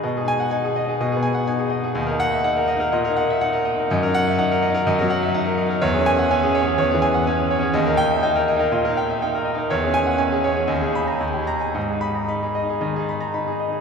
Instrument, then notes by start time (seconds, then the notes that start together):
grand piano
0.03 B2 D#5
0.17 D#4 G#4
0.28 G#5
0.40 F#5
0.51 D#4 G#5
0.65 G#4
0.76 D#5
0.85 D#4 G#4
1.00 B2 D#5
1.12 G#4
1.17 B3
1.23 G#5
1.34 F#5
1.47 D#4 G#5
1.58 G#4
1.70 D#5
1.80 D#4 G#4
1.95 D#2 D#5
2.07 A#4
2.11 D#4
2.20 F#5
2.32 E5
2.44 D#4 F#5
2.57 A#4
2.68 D#5
2.77 D#4 A#4
2.93 A#2 D#5
3.05 A#4
3.10 D#4
3.16 F#5
3.30 E5
3.41 D#4 F#5
3.53 A#4
3.65 D#5
3.74 D#4
3.79 A#4
3.90 F#2 D#5
4.03 A#4
4.07 D#4
4.14 F#5
4.27 E5
4.39 D#4 F#5
4.51 A#4
4.62 D#5
4.70 D#4
4.74 A#4
4.87 F#2 D#5
4.99 F#3 A#4
5.10 F#5
5.23 E5
5.34 D#4 F#5
5.46 A#4
5.57 D#5
5.66 D#4
5.70 A#4
5.81 E2 C#5
5.94 G#4
5.99 C#4
6.06 G#5
6.19 F#5
6.31 C#4 G#5
6.43 G#4
6.55 C#5
6.63 C#4 G#4
6.78 E2 C#5
6.91 E3 G#4
7.02 G#5
7.14 F#5
7.27 C#4 G#5
7.39 G#4
7.51 C#5
7.59 C#4 G#4
7.74 D#2 D#5
7.86 D#4 A#4
7.97 G5
8.11 E5
8.23 D#4 G5
8.35 A#4
8.48 D#5
8.56 D#4 A#4
8.72 A#2 D#5
8.85 A#4
8.90 D#4
8.97 G5
9.10 E5
9.22 D#4 G5
9.35 A#4
9.45 D#5
9.55 D#4 A#4
9.70 E2 C#5
9.83 C#4 G#4
9.94 G#5
10.06 F#5
10.18 C#4 G#5
10.32 G#4
10.44 C#5
10.53 C#4 G#4
10.68 D#2 D#5
10.81 G#4
10.85 D#4
10.95 B5
11.07 A#5
11.20 D#2 D#5
11.33 G4
11.38 D#4
11.47 A#5
11.61 G#5
11.75 G#2 D#5
11.88 G#4
11.93 D#4
12.01 B5
12.15 A#5
12.28 D#4 B5
12.43 G#4
12.55 D#5
12.63 D#4
12.69 G#4
12.81 D#3 D#5
12.96 D#4 G#4
13.09 B5
13.21 A#5
13.34 D#4 B5
13.47 G#4
13.60 D#5
13.68 D#4
13.72 G#4